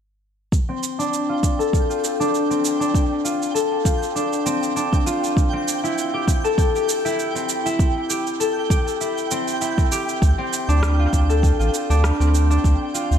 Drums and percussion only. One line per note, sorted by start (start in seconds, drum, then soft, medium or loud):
0.52 kick medium
0.52 cabasa soft
0.83 cabasa medium
1.00 cabasa soft
1.14 cabasa soft
1.43 kick medium
1.43 cabasa medium
1.60 cabasa soft
1.73 kick medium
1.73 cabasa soft
1.91 cabasa soft
2.04 cabasa medium
2.21 cabasa soft
2.35 cabasa soft
2.51 cabasa soft
2.65 cabasa medium
2.82 cabasa soft
2.94 kick loud
2.94 cabasa soft
3.25 cabasa medium
3.42 cabasa soft
3.56 cabasa soft
3.85 kick medium
3.85 cabasa medium
4.03 cabasa soft
4.16 cabasa soft
4.33 cabasa soft
4.46 cabasa medium
4.63 cabasa soft
4.77 cabasa soft
4.93 kick medium
4.93 cabasa soft
5.07 cabasa medium
5.24 cabasa soft
5.37 kick loud
5.37 cabasa soft
5.68 cabasa medium
5.85 cabasa soft
5.98 cabasa soft
6.28 kick loud
6.28 cabasa medium
6.45 cabasa soft
6.58 kick loud
6.58 cabasa soft
6.76 cabasa soft
6.89 cabasa medium
7.06 cabasa soft
7.19 cabasa soft
7.36 cabasa soft
7.49 cabasa medium
7.66 cabasa soft
7.79 kick loud
7.79 cabasa soft
8.10 cabasa medium
8.27 cabasa soft
8.41 cabasa soft
8.70 kick loud
8.70 cabasa medium
8.88 cabasa soft
9.01 cabasa soft
9.18 cabasa soft
9.31 cabasa medium
9.48 cabasa soft
9.62 cabasa soft
9.78 kick medium
9.78 cabasa soft
9.92 cabasa medium
10.09 cabasa soft
10.22 kick loud
10.22 cabasa soft
10.53 cabasa medium
10.70 cabasa soft
10.83 cross-stick medium
10.83 cabasa soft
11.13 kick medium
11.13 cabasa medium
11.30 cabasa soft
11.43 kick loud
11.43 cabasa soft
11.61 cabasa soft
11.74 cabasa medium
11.91 cabasa soft
12.04 cross-stick medium
12.04 cabasa soft
12.21 cabasa soft
12.35 cabasa medium
12.51 cabasa soft
12.64 kick loud
12.64 cabasa soft
12.95 cabasa medium
13.12 cabasa soft